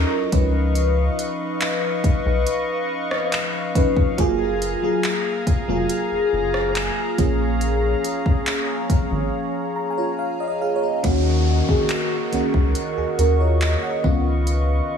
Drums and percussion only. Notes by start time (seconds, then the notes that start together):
0.32 kick, closed hi-hat
0.75 closed hi-hat
1.19 closed hi-hat
1.61 clap, closed hi-hat
2.04 kick, closed hi-hat
2.47 closed hi-hat
3.11 cross-stick
3.32 clap, closed hi-hat
3.75 kick, closed hi-hat
3.97 kick
4.18 kick, closed hi-hat
4.62 closed hi-hat
5.03 clap, closed hi-hat
5.47 kick, closed hi-hat
5.89 closed hi-hat
6.54 cross-stick
6.75 clap, closed hi-hat
7.18 kick, closed hi-hat
7.61 closed hi-hat
8.04 closed hi-hat
8.26 kick
8.46 clap, closed hi-hat
8.90 kick, closed hi-hat
11.04 kick, closed hi-hat
11.69 kick
11.89 clap, closed hi-hat
12.33 closed hi-hat
12.54 kick
12.75 closed hi-hat
13.19 closed hi-hat
13.61 clap, closed hi-hat
14.04 kick
14.47 closed hi-hat